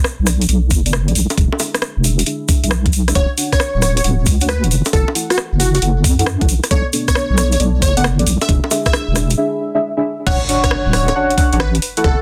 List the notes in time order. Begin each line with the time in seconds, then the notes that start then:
Already playing: B3 A4 D5
0.04 cross-stick, shaker
0.19 B1
0.26 B3 A4 D5, cross-stick, open hi-hat, shaker
0.42 closed hi-hat, shaker
0.48 B1 B3 A4 D5, closed hi-hat, shaker
0.71 F#1, kick, open hi-hat, shaker
0.86 B3 A4 D5, closed hi-hat, shaker
0.93 cross-stick, shaker
1.08 B1 B3 A4 D5, closed hi-hat
1.15 B1, open hi-hat, shaker
1.30 closed hi-hat, high bongo, shaker
1.37 E1 D4 G#4 E5, kick, closed hi-hat, shaker
1.52 high bongo
1.59 D4 G#4 E5, open hi-hat, high bongo, shaker
1.75 cross-stick, closed hi-hat, shaker
1.82 cross-stick, shaker
1.97 E1
2.04 D4 G#4 E5, open hi-hat, shaker
2.19 closed hi-hat, shaker
2.26 D4 G#4 E5, closed hi-hat, shaker
2.48 D4 G#4 E5, kick, open hi-hat, shaker
2.63 B1 D4 G#4 E5, closed hi-hat, shaker
2.71 cross-stick, shaker
2.86 kick, closed hi-hat
2.92 open hi-hat, shaker
3.08 D4 G#4 E5, cross-stick, closed hi-hat, shaker
3.15 D1 D4 C#5 F#5, kick, closed hi-hat
3.38 D4 C#5 F#5, open hi-hat, shaker
3.52 C#5, kick, cross-stick, closed hi-hat, shaker
3.60 cross-stick, shaker
3.75 D1
3.82 D4 C#5 F#5, cross-stick, open hi-hat, shaker
3.97 C#5, closed hi-hat, shaker
4.04 D1 D4 C#5 F#5, closed hi-hat
4.26 D2, kick, open hi-hat, shaker
4.41 D4 C#5 F#5, closed hi-hat, shaker
4.49 B4, cross-stick, shaker
4.63 D1 D4 C#5 F#5, closed hi-hat
4.71 F#1, open hi-hat, shaker
4.85 closed hi-hat, high bongo, shaker
4.93 F#1 E4 A4 F#5, kick, closed hi-hat, shaker
5.08 high bongo
5.15 E4 A4 F#5, open hi-hat, shaker
5.30 F#4, cross-stick, closed hi-hat, shaker
5.38 cross-stick, shaker
5.52 F#1
5.60 E4 F#4 A4 F#5, open hi-hat, shaker
5.74 F#4, closed hi-hat, shaker
5.82 F#1 E4 A4 F#5, closed hi-hat, shaker
6.04 F#2, kick, open hi-hat, shaker
6.19 E4 A4 F#5, closed hi-hat, shaker
6.26 cross-stick
6.41 F#1 E4 A4 F#5, kick, closed hi-hat
6.49 B1, open hi-hat, shaker
6.64 cross-stick, closed hi-hat, shaker
6.71 B1 B3 A4 C#5 D5, kick, closed hi-hat
6.93 B3 D4 A4, open hi-hat, shaker
7.08 C#5, kick, cross-stick, closed hi-hat, shaker
7.15 cross-stick, shaker
7.30 B1
7.37 B3 A4 C#5 D5, cross-stick, open hi-hat, shaker
7.52 C#5, closed hi-hat, shaker
7.60 B1 B3 A4 D5, closed hi-hat, shaker
7.82 F#1 C#5, kick, open hi-hat, shaker
7.97 B3 A4 D5 F#5, closed hi-hat, shaker
8.04 cross-stick, shaker
8.19 B1 B3 A4 D5, closed hi-hat
8.26 B1, open hi-hat, shaker
8.41 E5, closed hi-hat, high bongo, shaker
8.49 E1 D4 G#4 E5, kick, closed hi-hat, shaker
8.64 high bongo
8.71 D4 G#4 E5, open hi-hat, high bongo, shaker
8.85 E5, kick, cross-stick, closed hi-hat, shaker
8.93 cross-stick, shaker
9.08 E1
9.15 D4 G#4 E5, cross-stick, open hi-hat, shaker
9.30 closed hi-hat, shaker
9.38 D4 G#4 E5
9.75 D4 G#4 E5
9.97 D4 G#4 E5
10.26 D1 D4 C#5 F#5, kick, crash, impact
10.49 D4 C#5 F#5, open hi-hat
10.64 C#5, kick, cross-stick, closed hi-hat
10.71 cross-stick
10.86 D1
10.93 D4 C#5 F#5, cross-stick, open hi-hat
11.08 C#5, closed hi-hat, high bongo
11.15 D4 C#5 F#5
11.30 closed hi-hat
11.38 D4 C#5 F#5, kick, open hi-hat
11.53 A1 D4 C#5 F#5, closed hi-hat
11.60 B4, cross-stick
11.75 closed hi-hat
11.82 open hi-hat
11.97 E4 A4 F#5, closed hi-hat
12.04 F#1 E4 A4 F#5, kick